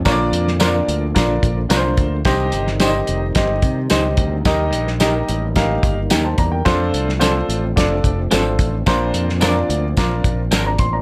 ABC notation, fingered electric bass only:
X:1
M:4/4
L:1/8
Q:1/4=109
K:Bb
V:1 name="Fingered electric bass" clef=bass
B,,, F,,2 D,, B,,, B,,, C,, D,, | C,, G,,,2 F,,, G,,, C, _D,, =D,, | E,, B,,,2 A,,,2 G,,, E,, =E,, | F,, C,,2 A,,, F,,, F,,, _A,,, =A,,, |
B,,, F,,2 D,, B,,, B,,, _A,,, =A,,, |]